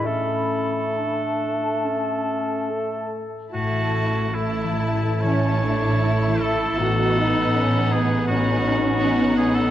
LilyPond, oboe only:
\new Staff \with { instrumentName = "Oboe" } { \time 4/4 \key a \major \tempo 4 = 75 a'2.~ a'8 r8 | fis'4 e'4 cis''4. a'8~ | a'4. gis'8 fis'4. gis'16 a'16 | }